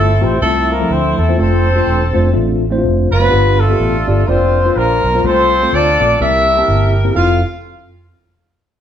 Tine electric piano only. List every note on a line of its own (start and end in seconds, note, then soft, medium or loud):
0.00 0.10 A3 medium
0.00 0.10 C4 medium
0.00 0.11 E4 medium
0.00 0.11 F4 medium
0.00 0.11 A4 medium
0.21 0.36 A3 medium
0.21 0.36 C4 medium
0.21 0.37 E4 medium
0.21 0.37 F4 medium
0.21 0.37 G4 medium
0.42 0.71 A3 medium
0.42 0.71 C4 medium
0.42 0.72 E4 medium
0.42 0.72 F4 medium
0.42 0.72 A4 medium
0.80 1.16 F3 medium
0.80 1.16 A3 medium
0.80 1.16 C4 medium
0.80 1.16 E4 medium
0.80 1.16 A4 medium
1.28 1.36 A3 medium
1.28 1.36 C4 medium
1.28 1.36 E4 medium
1.28 1.36 F4 medium
1.28 1.36 C5 medium
1.38 1.67 A3 medium
1.38 1.68 C4 medium
1.38 1.68 D4 medium
1.38 1.68 F4 medium
1.38 1.68 A4 medium
1.75 2.02 A3 medium
1.75 2.02 C4 medium
1.75 2.02 D4 medium
1.75 2.02 F4 medium
1.75 2.03 A4 medium
2.13 2.29 A3 medium
2.13 2.29 C4 medium
2.13 2.29 D4 medium
2.13 2.29 F4 medium
2.13 2.29 C5 loud
2.33 2.63 A3 medium
2.33 2.63 C4 medium
2.33 2.63 D4 medium
2.33 2.64 F4 medium
2.33 2.64 A4 medium
2.70 3.07 A3 loud
2.70 3.07 C4 medium
2.70 3.08 D4 medium
2.70 2.77 E4 medium
2.70 3.08 C5 loud
2.77 3.11 F4 medium
3.20 3.28 A3 medium
3.20 3.28 C4 medium
3.20 3.28 D4 medium
3.20 3.28 F4 medium
3.20 3.29 C5 medium
3.30 4.03 G2 medium
3.30 3.60 B3 medium
3.30 3.60 D4 medium
3.30 3.60 F4 medium
3.30 3.60 G4 medium
3.30 3.60 B4 medium
3.69 3.95 B3 medium
3.69 3.95 D4 medium
3.69 3.95 F4 medium
3.69 3.96 G4 medium
3.69 3.95 A4 medium
4.07 4.22 B3 medium
4.07 4.22 D4 medium
4.07 4.22 F4 medium
4.07 4.22 G4 medium
4.07 4.22 D5 medium
4.28 4.57 A#3 medium
4.28 4.57 D4 medium
4.28 4.57 F4 medium
4.28 4.57 A#4 medium
4.28 4.57 D5 medium
4.65 5.01 A#3 medium
4.65 5.01 D4 medium
4.65 5.01 F4 medium
4.65 5.01 A#4 medium
4.65 4.71 B4 medium
4.72 5.04 C5 medium
5.14 5.21 A#3 medium
5.14 5.21 D4 medium
5.14 5.22 F4 medium
5.14 5.22 A#4 medium
5.14 5.22 C5 medium
5.24 5.96 C3 medium
5.24 5.53 A3 medium
5.24 5.53 C4 medium
5.24 5.53 F4 medium
5.24 5.53 A4 medium
5.24 5.53 C5 medium
5.62 5.87 A3 medium
5.62 5.88 C4 medium
5.62 5.88 F4 medium
5.62 5.88 A4 medium
5.62 5.88 C5 medium
6.00 6.14 A3 medium
6.00 6.14 C4 medium
6.00 6.15 F4 medium
6.00 6.15 A4 medium
6.00 6.15 D5 medium
6.20 6.92 C3 medium
6.20 6.49 A#3 medium
6.20 6.49 C4 medium
6.20 6.49 E4 medium
6.20 6.49 G4 medium
6.20 6.49 A#4 medium
6.56 6.93 A#3 medium
6.56 6.93 C4 medium
6.56 6.93 E4 medium
6.56 6.93 G4 medium
6.56 6.93 A5 medium
7.04 7.12 A#3 medium
7.04 7.12 C4 medium
7.04 7.12 E4 medium
7.04 7.13 G4 medium
7.04 7.13 A#4 medium
7.15 7.41 F2 medium
7.15 7.41 C4 medium
7.15 7.41 E4 medium
7.15 7.41 F4 medium
7.15 7.41 A4 medium